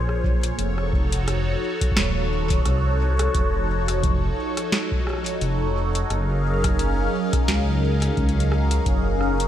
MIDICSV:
0, 0, Header, 1, 4, 480
1, 0, Start_track
1, 0, Tempo, 689655
1, 408, Time_signature, 4, 2, 24, 8
1, 6597, End_track
2, 0, Start_track
2, 0, Title_t, "Analog synth pad"
2, 0, Program_c, 0, 89
2, 0, Note_on_c, 0, 58, 84
2, 0, Note_on_c, 0, 65, 76
2, 0, Note_on_c, 0, 68, 78
2, 0, Note_on_c, 0, 72, 76
2, 0, Note_on_c, 0, 73, 90
2, 380, Note_off_c, 0, 58, 0
2, 380, Note_off_c, 0, 65, 0
2, 380, Note_off_c, 0, 68, 0
2, 380, Note_off_c, 0, 72, 0
2, 407, Note_on_c, 0, 53, 83
2, 407, Note_on_c, 0, 69, 76
2, 408, Note_on_c, 0, 63, 72
2, 408, Note_on_c, 0, 66, 76
2, 4220, Note_off_c, 0, 53, 0
2, 4220, Note_off_c, 0, 66, 0
2, 4220, Note_off_c, 0, 69, 0
2, 4220, Note_off_c, 0, 73, 0
2, 4249, Note_on_c, 0, 54, 84
2, 4249, Note_on_c, 0, 61, 75
2, 4249, Note_on_c, 0, 68, 78
2, 4249, Note_on_c, 0, 70, 77
2, 4249, Note_on_c, 0, 77, 91
2, 6597, Note_off_c, 0, 54, 0
2, 6597, Note_off_c, 0, 61, 0
2, 6597, Note_off_c, 0, 63, 0
2, 6597, Note_off_c, 0, 68, 0
2, 6597, Note_off_c, 0, 70, 0
2, 6597, Note_off_c, 0, 77, 0
2, 6597, End_track
3, 0, Start_track
3, 0, Title_t, "Detuned saw bass"
3, 0, Program_c, 1, 39
3, 0, Note_on_c, 1, 34, 84
3, 363, Note_off_c, 1, 34, 0
3, 407, Note_on_c, 1, 29, 97
3, 1082, Note_off_c, 1, 29, 0
3, 1368, Note_on_c, 1, 27, 99
3, 1803, Note_off_c, 1, 27, 0
3, 1848, Note_on_c, 1, 36, 99
3, 2283, Note_off_c, 1, 36, 0
3, 2327, Note_on_c, 1, 29, 96
3, 3003, Note_off_c, 1, 29, 0
3, 3767, Note_on_c, 1, 29, 83
3, 4203, Note_off_c, 1, 29, 0
3, 4247, Note_on_c, 1, 30, 94
3, 4922, Note_off_c, 1, 30, 0
3, 5206, Note_on_c, 1, 37, 95
3, 5642, Note_off_c, 1, 37, 0
3, 5687, Note_on_c, 1, 37, 96
3, 6122, Note_off_c, 1, 37, 0
3, 6168, Note_on_c, 1, 30, 94
3, 6597, Note_off_c, 1, 30, 0
3, 6597, End_track
4, 0, Start_track
4, 0, Title_t, "Drums"
4, 62, Note_on_c, 9, 37, 54
4, 132, Note_off_c, 9, 37, 0
4, 167, Note_on_c, 9, 36, 107
4, 237, Note_off_c, 9, 36, 0
4, 302, Note_on_c, 9, 42, 67
4, 372, Note_off_c, 9, 42, 0
4, 408, Note_on_c, 9, 42, 51
4, 478, Note_off_c, 9, 42, 0
4, 542, Note_on_c, 9, 37, 50
4, 612, Note_off_c, 9, 37, 0
4, 647, Note_on_c, 9, 36, 115
4, 717, Note_off_c, 9, 36, 0
4, 783, Note_on_c, 9, 42, 68
4, 852, Note_off_c, 9, 42, 0
4, 888, Note_on_c, 9, 37, 73
4, 888, Note_on_c, 9, 42, 52
4, 958, Note_off_c, 9, 37, 0
4, 958, Note_off_c, 9, 42, 0
4, 1262, Note_on_c, 9, 36, 102
4, 1263, Note_on_c, 9, 42, 64
4, 1331, Note_off_c, 9, 36, 0
4, 1332, Note_off_c, 9, 42, 0
4, 1332, Note_on_c, 9, 36, 87
4, 1368, Note_on_c, 9, 37, 49
4, 1368, Note_on_c, 9, 38, 122
4, 1368, Note_on_c, 9, 42, 54
4, 1402, Note_off_c, 9, 36, 0
4, 1412, Note_on_c, 9, 36, 67
4, 1438, Note_off_c, 9, 37, 0
4, 1438, Note_off_c, 9, 38, 0
4, 1438, Note_off_c, 9, 42, 0
4, 1482, Note_off_c, 9, 36, 0
4, 1742, Note_on_c, 9, 36, 121
4, 1742, Note_on_c, 9, 42, 64
4, 1811, Note_off_c, 9, 36, 0
4, 1812, Note_off_c, 9, 42, 0
4, 1848, Note_on_c, 9, 37, 51
4, 1848, Note_on_c, 9, 42, 55
4, 1917, Note_off_c, 9, 37, 0
4, 1917, Note_off_c, 9, 42, 0
4, 2222, Note_on_c, 9, 37, 75
4, 2222, Note_on_c, 9, 42, 64
4, 2292, Note_off_c, 9, 37, 0
4, 2292, Note_off_c, 9, 42, 0
4, 2327, Note_on_c, 9, 36, 110
4, 2328, Note_on_c, 9, 42, 49
4, 2397, Note_off_c, 9, 36, 0
4, 2398, Note_off_c, 9, 42, 0
4, 2703, Note_on_c, 9, 37, 49
4, 2703, Note_on_c, 9, 42, 64
4, 2772, Note_off_c, 9, 37, 0
4, 2772, Note_off_c, 9, 42, 0
4, 2807, Note_on_c, 9, 36, 117
4, 2808, Note_on_c, 9, 42, 50
4, 2877, Note_off_c, 9, 36, 0
4, 2878, Note_off_c, 9, 42, 0
4, 3182, Note_on_c, 9, 37, 49
4, 3182, Note_on_c, 9, 42, 61
4, 3252, Note_off_c, 9, 37, 0
4, 3252, Note_off_c, 9, 42, 0
4, 3288, Note_on_c, 9, 38, 120
4, 3288, Note_on_c, 9, 42, 52
4, 3357, Note_off_c, 9, 38, 0
4, 3357, Note_off_c, 9, 42, 0
4, 3422, Note_on_c, 9, 36, 104
4, 3491, Note_off_c, 9, 36, 0
4, 3528, Note_on_c, 9, 37, 69
4, 3550, Note_off_c, 9, 37, 0
4, 3550, Note_on_c, 9, 37, 56
4, 3572, Note_off_c, 9, 37, 0
4, 3572, Note_on_c, 9, 37, 46
4, 3595, Note_off_c, 9, 37, 0
4, 3595, Note_on_c, 9, 37, 37
4, 3608, Note_off_c, 9, 37, 0
4, 3608, Note_on_c, 9, 37, 31
4, 3639, Note_off_c, 9, 37, 0
4, 3639, Note_on_c, 9, 37, 24
4, 3662, Note_on_c, 9, 42, 66
4, 3709, Note_off_c, 9, 37, 0
4, 3732, Note_off_c, 9, 42, 0
4, 3768, Note_on_c, 9, 42, 51
4, 3837, Note_off_c, 9, 42, 0
4, 4142, Note_on_c, 9, 42, 64
4, 4211, Note_off_c, 9, 42, 0
4, 4248, Note_on_c, 9, 37, 49
4, 4248, Note_on_c, 9, 42, 49
4, 4317, Note_off_c, 9, 37, 0
4, 4317, Note_off_c, 9, 42, 0
4, 4622, Note_on_c, 9, 36, 102
4, 4622, Note_on_c, 9, 37, 71
4, 4622, Note_on_c, 9, 42, 64
4, 4691, Note_off_c, 9, 36, 0
4, 4692, Note_off_c, 9, 37, 0
4, 4692, Note_off_c, 9, 42, 0
4, 4728, Note_on_c, 9, 42, 48
4, 4797, Note_off_c, 9, 42, 0
4, 5102, Note_on_c, 9, 36, 117
4, 5102, Note_on_c, 9, 37, 49
4, 5102, Note_on_c, 9, 42, 63
4, 5171, Note_off_c, 9, 36, 0
4, 5172, Note_off_c, 9, 37, 0
4, 5172, Note_off_c, 9, 42, 0
4, 5208, Note_on_c, 9, 38, 119
4, 5208, Note_on_c, 9, 42, 47
4, 5277, Note_off_c, 9, 38, 0
4, 5277, Note_off_c, 9, 42, 0
4, 5582, Note_on_c, 9, 37, 48
4, 5582, Note_on_c, 9, 42, 62
4, 5652, Note_off_c, 9, 37, 0
4, 5652, Note_off_c, 9, 42, 0
4, 5687, Note_on_c, 9, 36, 101
4, 5688, Note_on_c, 9, 42, 22
4, 5757, Note_off_c, 9, 36, 0
4, 5757, Note_off_c, 9, 42, 0
4, 5768, Note_on_c, 9, 42, 32
4, 5837, Note_off_c, 9, 42, 0
4, 5848, Note_on_c, 9, 42, 40
4, 5917, Note_off_c, 9, 42, 0
4, 5928, Note_on_c, 9, 37, 75
4, 5997, Note_off_c, 9, 37, 0
4, 6062, Note_on_c, 9, 42, 61
4, 6132, Note_off_c, 9, 42, 0
4, 6167, Note_on_c, 9, 36, 113
4, 6168, Note_on_c, 9, 42, 48
4, 6237, Note_off_c, 9, 36, 0
4, 6237, Note_off_c, 9, 42, 0
4, 6408, Note_on_c, 9, 37, 52
4, 6477, Note_off_c, 9, 37, 0
4, 6542, Note_on_c, 9, 42, 61
4, 6597, Note_off_c, 9, 42, 0
4, 6597, End_track
0, 0, End_of_file